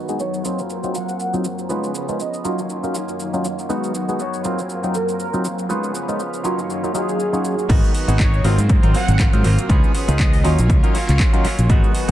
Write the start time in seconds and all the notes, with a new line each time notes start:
Already playing: D#3 F#3 B3 D#4 F#4 B4 G#5
0.08 G#3 B3 D#4 F#4 G#4, shaker
0.19 D#3 B3 D#4 F#4 C#5, shaker
0.34 shaker
0.43 F#3 A#3 C4 D#4 F4 A#4 C5 F6, shaker
0.48 F#3
0.59 shaker
0.70 shaker
0.83 F#3 C4 D#4 F4 A#4, shaker
0.94 F#5, shaker
1.09 shaker
1.20 shaker
1.33 F#3 C4 D#4 F4 A#4, shaker
1.44 shaker
1.59 shaker
1.69 F3 G#3 B3 C#4 D#4 F4 G#4 B4, shaker
1.84 shaker
1.95 shaker
2.08 G#3 C#4 D#4 F4 A#4, shaker
2.19 D#5, shaker
2.34 shaker
2.44 F#3 A#3 C#4 D#4 F4 A#4 C#5, shaker
2.59 shaker
2.70 shaker
2.83 F#3 C#4 D#4 F4 A#4, shaker
2.94 A#3 C#4 F4, shaker
3.09 shaker
3.20 shaker
3.33 F#3 C#4 D#4 F4 A#4, shaker
3.45 shaker
3.59 shaker
3.69 D#3 G#3 B3 D#4 F#4 A#4 B4 G#5, shaker
3.84 shaker
3.95 shaker
4.08 G#3 B3 D#4 F#4 G#4, shaker
4.19 D#3 B3 D#4 F#4 C#5, shaker
4.34 shaker
4.43 F#3 A#3 C4 D#4 F4 A#4 C5 F5, shaker
4.48 F#3
4.59 shaker
4.69 shaker
4.83 F#3 C4 D#4 F4 A#4, shaker
4.94 A#4, shaker
5.09 shaker
5.19 A#4, shaker
5.33 F#3 C4 D#4 F4 A#4, shaker
5.45 shaker
5.59 shaker
5.69 F3 G#3 B3 C#4 D#4 F4 G#4 B4, shaker
5.84 shaker
5.95 shaker
6.08 G#3 C#4 D#4 F4 A#4, shaker
6.20 shaker
6.34 shaker
6.43 F#3 A#3 C#4 D#4 F4 A#4 C#5 F5, shaker
6.48 F#3
6.59 shaker
6.70 shaker
6.83 F#3 C#4 D#4 F4 A#4, shaker
6.94 F#3 C#4 D#4 F4 G#4 A#4, shaker
7.09 shaker
7.20 shaker
7.33 F#3 C#4 D#4 F4 C#5, shaker
7.45 shaker
7.59 shaker
7.69 G#1 D#3 F#3 G#3 B3 D#4 F#4 A#4 B4 G#5, kick, closed hi-hat, crash, shaker
7.84 shaker
7.95 open hi-hat
8.08 G#1 G#3 B3 D#4 F#4 G#4, closed hi-hat, shaker
8.19 D#3 B3 D#4 F#4 C#5, kick, clap, closed hi-hat, shaker
8.34 shaker
8.44 G#1 F#3 A#3 C4 D#4 F4 A#4 F6, open hi-hat
8.58 G#2, closed hi-hat, shaker
8.69 kick, closed hi-hat, shaker
8.83 G#1 F#3 A#3 C4 D#4 F4 A#4, closed hi-hat, shaker
8.94 F#3 A#3 C4 F4 F#5, open hi-hat
9.08 G#1, closed hi-hat, shaker
9.19 F#3 A#3 C4 F4, kick, clap, closed hi-hat, shaker
9.33 G#2 F#3 A#3 C4 D#4 F4 A#4, closed hi-hat, shaker
9.44 G#1 F#3 A#3 C4 F4, open hi-hat
9.59 closed hi-hat, shaker
9.69 C#2 F3 G#3 B3 C#4 D#4 F4 G#4 B4, kick, closed hi-hat, shaker
9.84 shaker
9.95 open hi-hat
10.08 C#2 G#3 B3 C#4 D#4 F4 G#4 A#4, closed hi-hat, shaker
10.19 F3 B3 C#4 G#4 D#5, kick, clap, closed hi-hat, shaker
10.33 open hi-hat, shaker
10.44 D#2 F#3 A#3 C#4 D#4 F4 A#4 C#5, open hi-hat
10.59 A#1, closed hi-hat, shaker
10.70 C#2, kick, closed hi-hat, shaker
10.83 F#3 A#3 C#4 D#4 F4 A#4, closed hi-hat, shaker
10.94 F#3 A#3 C#4 F4, open hi-hat
11.09 C#2, clap, closed hi-hat, shaker
11.19 F#3 A#3 C#4 F4, kick, clap, closed hi-hat, shaker
11.33 F#3 A#3 C#4 D#4 F4 A#4, closed hi-hat, shaker
11.44 F#3 A#3 C#4 F4, muted fingered electric bass stroke, open hi-hat
11.58 A#1, closed hi-hat, shaker
11.69 G#1 D#3 F#3 G#3 B3 D#4 F#4 A#4 B4 G#5, kick, closed hi-hat, shaker
11.84 shaker
11.95 open hi-hat
12.08 F#4